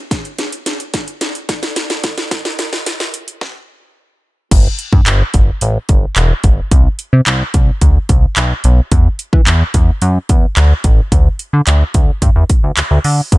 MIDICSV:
0, 0, Header, 1, 3, 480
1, 0, Start_track
1, 0, Key_signature, 1, "major"
1, 0, Tempo, 550459
1, 97, Time_signature, 4, 2, 24, 8
1, 11668, End_track
2, 0, Start_track
2, 0, Title_t, "Analog synth bass"
2, 0, Program_c, 0, 38
2, 3936, Note_on_c, 0, 31, 112
2, 4082, Note_off_c, 0, 31, 0
2, 4296, Note_on_c, 0, 43, 108
2, 4369, Note_off_c, 0, 43, 0
2, 4415, Note_on_c, 0, 31, 91
2, 4561, Note_off_c, 0, 31, 0
2, 4657, Note_on_c, 0, 31, 94
2, 4802, Note_off_c, 0, 31, 0
2, 4896, Note_on_c, 0, 33, 100
2, 5041, Note_off_c, 0, 33, 0
2, 5137, Note_on_c, 0, 31, 89
2, 5282, Note_off_c, 0, 31, 0
2, 5376, Note_on_c, 0, 28, 102
2, 5521, Note_off_c, 0, 28, 0
2, 5615, Note_on_c, 0, 31, 83
2, 5761, Note_off_c, 0, 31, 0
2, 5855, Note_on_c, 0, 36, 111
2, 6001, Note_off_c, 0, 36, 0
2, 6217, Note_on_c, 0, 48, 107
2, 6289, Note_off_c, 0, 48, 0
2, 6337, Note_on_c, 0, 36, 87
2, 6482, Note_off_c, 0, 36, 0
2, 6577, Note_on_c, 0, 36, 89
2, 6722, Note_off_c, 0, 36, 0
2, 6815, Note_on_c, 0, 38, 101
2, 6961, Note_off_c, 0, 38, 0
2, 7058, Note_on_c, 0, 36, 97
2, 7202, Note_off_c, 0, 36, 0
2, 7296, Note_on_c, 0, 35, 96
2, 7442, Note_off_c, 0, 35, 0
2, 7537, Note_on_c, 0, 35, 90
2, 7682, Note_off_c, 0, 35, 0
2, 7776, Note_on_c, 0, 40, 117
2, 7921, Note_off_c, 0, 40, 0
2, 8135, Note_on_c, 0, 52, 99
2, 8208, Note_off_c, 0, 52, 0
2, 8256, Note_on_c, 0, 40, 97
2, 8402, Note_off_c, 0, 40, 0
2, 8496, Note_on_c, 0, 40, 104
2, 8641, Note_off_c, 0, 40, 0
2, 8736, Note_on_c, 0, 42, 107
2, 8881, Note_off_c, 0, 42, 0
2, 8977, Note_on_c, 0, 40, 93
2, 9122, Note_off_c, 0, 40, 0
2, 9216, Note_on_c, 0, 38, 99
2, 9361, Note_off_c, 0, 38, 0
2, 9455, Note_on_c, 0, 33, 92
2, 9601, Note_off_c, 0, 33, 0
2, 9695, Note_on_c, 0, 38, 112
2, 9841, Note_off_c, 0, 38, 0
2, 10056, Note_on_c, 0, 50, 103
2, 10129, Note_off_c, 0, 50, 0
2, 10177, Note_on_c, 0, 38, 91
2, 10322, Note_off_c, 0, 38, 0
2, 10416, Note_on_c, 0, 38, 88
2, 10562, Note_off_c, 0, 38, 0
2, 10655, Note_on_c, 0, 43, 101
2, 10728, Note_off_c, 0, 43, 0
2, 10777, Note_on_c, 0, 40, 93
2, 10849, Note_off_c, 0, 40, 0
2, 11017, Note_on_c, 0, 38, 88
2, 11089, Note_off_c, 0, 38, 0
2, 11136, Note_on_c, 0, 38, 53
2, 11184, Note_off_c, 0, 38, 0
2, 11256, Note_on_c, 0, 38, 86
2, 11329, Note_off_c, 0, 38, 0
2, 11376, Note_on_c, 0, 50, 104
2, 11521, Note_off_c, 0, 50, 0
2, 11617, Note_on_c, 0, 31, 121
2, 11668, Note_off_c, 0, 31, 0
2, 11668, End_track
3, 0, Start_track
3, 0, Title_t, "Drums"
3, 97, Note_on_c, 9, 36, 107
3, 98, Note_on_c, 9, 38, 88
3, 98, Note_on_c, 9, 42, 94
3, 184, Note_off_c, 9, 36, 0
3, 185, Note_off_c, 9, 38, 0
3, 185, Note_off_c, 9, 42, 0
3, 218, Note_on_c, 9, 42, 51
3, 306, Note_off_c, 9, 42, 0
3, 336, Note_on_c, 9, 42, 82
3, 337, Note_on_c, 9, 38, 91
3, 423, Note_off_c, 9, 42, 0
3, 424, Note_off_c, 9, 38, 0
3, 457, Note_on_c, 9, 42, 52
3, 544, Note_off_c, 9, 42, 0
3, 577, Note_on_c, 9, 38, 97
3, 577, Note_on_c, 9, 42, 108
3, 664, Note_off_c, 9, 42, 0
3, 665, Note_off_c, 9, 38, 0
3, 698, Note_on_c, 9, 42, 59
3, 785, Note_off_c, 9, 42, 0
3, 816, Note_on_c, 9, 42, 88
3, 817, Note_on_c, 9, 38, 95
3, 818, Note_on_c, 9, 36, 85
3, 903, Note_off_c, 9, 42, 0
3, 904, Note_off_c, 9, 38, 0
3, 905, Note_off_c, 9, 36, 0
3, 939, Note_on_c, 9, 42, 60
3, 1026, Note_off_c, 9, 42, 0
3, 1056, Note_on_c, 9, 42, 92
3, 1057, Note_on_c, 9, 38, 96
3, 1143, Note_off_c, 9, 42, 0
3, 1144, Note_off_c, 9, 38, 0
3, 1178, Note_on_c, 9, 42, 58
3, 1265, Note_off_c, 9, 42, 0
3, 1298, Note_on_c, 9, 38, 98
3, 1298, Note_on_c, 9, 42, 78
3, 1299, Note_on_c, 9, 36, 87
3, 1385, Note_off_c, 9, 38, 0
3, 1385, Note_off_c, 9, 42, 0
3, 1386, Note_off_c, 9, 36, 0
3, 1419, Note_on_c, 9, 38, 101
3, 1420, Note_on_c, 9, 42, 57
3, 1506, Note_off_c, 9, 38, 0
3, 1507, Note_off_c, 9, 42, 0
3, 1537, Note_on_c, 9, 38, 104
3, 1537, Note_on_c, 9, 42, 98
3, 1624, Note_off_c, 9, 38, 0
3, 1624, Note_off_c, 9, 42, 0
3, 1656, Note_on_c, 9, 42, 62
3, 1658, Note_on_c, 9, 38, 103
3, 1743, Note_off_c, 9, 42, 0
3, 1745, Note_off_c, 9, 38, 0
3, 1775, Note_on_c, 9, 42, 88
3, 1777, Note_on_c, 9, 36, 93
3, 1777, Note_on_c, 9, 38, 105
3, 1862, Note_off_c, 9, 42, 0
3, 1864, Note_off_c, 9, 36, 0
3, 1864, Note_off_c, 9, 38, 0
3, 1897, Note_on_c, 9, 42, 65
3, 1898, Note_on_c, 9, 38, 103
3, 1984, Note_off_c, 9, 42, 0
3, 1985, Note_off_c, 9, 38, 0
3, 2017, Note_on_c, 9, 36, 110
3, 2017, Note_on_c, 9, 38, 113
3, 2017, Note_on_c, 9, 42, 93
3, 2104, Note_off_c, 9, 36, 0
3, 2104, Note_off_c, 9, 38, 0
3, 2104, Note_off_c, 9, 42, 0
3, 2138, Note_on_c, 9, 38, 116
3, 2138, Note_on_c, 9, 42, 51
3, 2225, Note_off_c, 9, 38, 0
3, 2226, Note_off_c, 9, 42, 0
3, 2256, Note_on_c, 9, 42, 80
3, 2258, Note_on_c, 9, 38, 108
3, 2343, Note_off_c, 9, 42, 0
3, 2345, Note_off_c, 9, 38, 0
3, 2378, Note_on_c, 9, 38, 111
3, 2378, Note_on_c, 9, 42, 54
3, 2465, Note_off_c, 9, 38, 0
3, 2465, Note_off_c, 9, 42, 0
3, 2497, Note_on_c, 9, 42, 118
3, 2498, Note_on_c, 9, 38, 117
3, 2585, Note_off_c, 9, 38, 0
3, 2585, Note_off_c, 9, 42, 0
3, 2617, Note_on_c, 9, 38, 119
3, 2617, Note_on_c, 9, 42, 59
3, 2705, Note_off_c, 9, 38, 0
3, 2705, Note_off_c, 9, 42, 0
3, 2736, Note_on_c, 9, 42, 90
3, 2823, Note_off_c, 9, 42, 0
3, 2858, Note_on_c, 9, 42, 61
3, 2945, Note_off_c, 9, 42, 0
3, 2977, Note_on_c, 9, 36, 107
3, 2978, Note_on_c, 9, 38, 86
3, 3064, Note_off_c, 9, 36, 0
3, 3065, Note_off_c, 9, 38, 0
3, 3936, Note_on_c, 9, 36, 111
3, 3936, Note_on_c, 9, 42, 98
3, 3936, Note_on_c, 9, 49, 110
3, 4023, Note_off_c, 9, 49, 0
3, 4024, Note_off_c, 9, 36, 0
3, 4024, Note_off_c, 9, 42, 0
3, 4174, Note_on_c, 9, 42, 84
3, 4261, Note_off_c, 9, 42, 0
3, 4295, Note_on_c, 9, 36, 101
3, 4383, Note_off_c, 9, 36, 0
3, 4415, Note_on_c, 9, 42, 113
3, 4417, Note_on_c, 9, 39, 125
3, 4502, Note_off_c, 9, 42, 0
3, 4504, Note_off_c, 9, 39, 0
3, 4654, Note_on_c, 9, 42, 89
3, 4657, Note_on_c, 9, 36, 87
3, 4741, Note_off_c, 9, 42, 0
3, 4744, Note_off_c, 9, 36, 0
3, 4894, Note_on_c, 9, 42, 101
3, 4982, Note_off_c, 9, 42, 0
3, 5134, Note_on_c, 9, 42, 82
3, 5137, Note_on_c, 9, 36, 94
3, 5221, Note_off_c, 9, 42, 0
3, 5224, Note_off_c, 9, 36, 0
3, 5373, Note_on_c, 9, 39, 126
3, 5374, Note_on_c, 9, 42, 103
3, 5461, Note_off_c, 9, 39, 0
3, 5461, Note_off_c, 9, 42, 0
3, 5612, Note_on_c, 9, 42, 85
3, 5615, Note_on_c, 9, 36, 98
3, 5699, Note_off_c, 9, 42, 0
3, 5702, Note_off_c, 9, 36, 0
3, 5855, Note_on_c, 9, 36, 111
3, 5855, Note_on_c, 9, 42, 101
3, 5942, Note_off_c, 9, 42, 0
3, 5943, Note_off_c, 9, 36, 0
3, 6093, Note_on_c, 9, 42, 85
3, 6180, Note_off_c, 9, 42, 0
3, 6334, Note_on_c, 9, 42, 112
3, 6336, Note_on_c, 9, 39, 123
3, 6421, Note_off_c, 9, 42, 0
3, 6423, Note_off_c, 9, 39, 0
3, 6574, Note_on_c, 9, 42, 89
3, 6577, Note_on_c, 9, 36, 88
3, 6661, Note_off_c, 9, 42, 0
3, 6664, Note_off_c, 9, 36, 0
3, 6815, Note_on_c, 9, 36, 80
3, 6815, Note_on_c, 9, 42, 99
3, 6902, Note_off_c, 9, 36, 0
3, 6902, Note_off_c, 9, 42, 0
3, 7055, Note_on_c, 9, 42, 83
3, 7057, Note_on_c, 9, 36, 91
3, 7142, Note_off_c, 9, 42, 0
3, 7144, Note_off_c, 9, 36, 0
3, 7293, Note_on_c, 9, 39, 125
3, 7293, Note_on_c, 9, 42, 101
3, 7380, Note_off_c, 9, 39, 0
3, 7381, Note_off_c, 9, 42, 0
3, 7533, Note_on_c, 9, 42, 89
3, 7620, Note_off_c, 9, 42, 0
3, 7774, Note_on_c, 9, 42, 100
3, 7775, Note_on_c, 9, 36, 111
3, 7861, Note_off_c, 9, 42, 0
3, 7862, Note_off_c, 9, 36, 0
3, 8013, Note_on_c, 9, 42, 82
3, 8101, Note_off_c, 9, 42, 0
3, 8135, Note_on_c, 9, 36, 104
3, 8222, Note_off_c, 9, 36, 0
3, 8255, Note_on_c, 9, 42, 113
3, 8257, Note_on_c, 9, 39, 127
3, 8342, Note_off_c, 9, 42, 0
3, 8344, Note_off_c, 9, 39, 0
3, 8494, Note_on_c, 9, 42, 87
3, 8496, Note_on_c, 9, 36, 93
3, 8581, Note_off_c, 9, 42, 0
3, 8583, Note_off_c, 9, 36, 0
3, 8734, Note_on_c, 9, 42, 101
3, 8821, Note_off_c, 9, 42, 0
3, 8974, Note_on_c, 9, 42, 84
3, 8977, Note_on_c, 9, 36, 94
3, 9061, Note_off_c, 9, 42, 0
3, 9064, Note_off_c, 9, 36, 0
3, 9214, Note_on_c, 9, 39, 117
3, 9214, Note_on_c, 9, 42, 103
3, 9301, Note_off_c, 9, 39, 0
3, 9302, Note_off_c, 9, 42, 0
3, 9453, Note_on_c, 9, 42, 92
3, 9455, Note_on_c, 9, 36, 96
3, 9540, Note_off_c, 9, 42, 0
3, 9542, Note_off_c, 9, 36, 0
3, 9696, Note_on_c, 9, 36, 108
3, 9696, Note_on_c, 9, 42, 97
3, 9783, Note_off_c, 9, 36, 0
3, 9783, Note_off_c, 9, 42, 0
3, 9935, Note_on_c, 9, 42, 84
3, 10022, Note_off_c, 9, 42, 0
3, 10175, Note_on_c, 9, 42, 108
3, 10177, Note_on_c, 9, 39, 125
3, 10262, Note_off_c, 9, 42, 0
3, 10264, Note_off_c, 9, 39, 0
3, 10414, Note_on_c, 9, 42, 86
3, 10417, Note_on_c, 9, 36, 90
3, 10501, Note_off_c, 9, 42, 0
3, 10504, Note_off_c, 9, 36, 0
3, 10655, Note_on_c, 9, 36, 82
3, 10655, Note_on_c, 9, 42, 100
3, 10742, Note_off_c, 9, 42, 0
3, 10743, Note_off_c, 9, 36, 0
3, 10896, Note_on_c, 9, 42, 81
3, 10897, Note_on_c, 9, 36, 90
3, 10983, Note_off_c, 9, 42, 0
3, 10985, Note_off_c, 9, 36, 0
3, 11136, Note_on_c, 9, 39, 115
3, 11136, Note_on_c, 9, 42, 100
3, 11223, Note_off_c, 9, 39, 0
3, 11224, Note_off_c, 9, 42, 0
3, 11375, Note_on_c, 9, 46, 87
3, 11462, Note_off_c, 9, 46, 0
3, 11616, Note_on_c, 9, 36, 109
3, 11616, Note_on_c, 9, 42, 98
3, 11668, Note_off_c, 9, 36, 0
3, 11668, Note_off_c, 9, 42, 0
3, 11668, End_track
0, 0, End_of_file